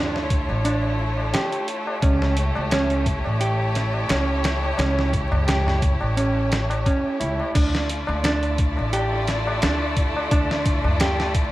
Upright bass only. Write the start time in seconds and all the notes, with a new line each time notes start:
Already playing: D2
0.50 A1
2.02 C#2
2.56 C#2
3.26 A1
4.10 C#2
4.78 C#2
5.32 C#2
6.02 A1
7.21 C#2
7.55 D2
8.08 D2
8.78 A1
9.63 D2
10.31 D2
10.84 D2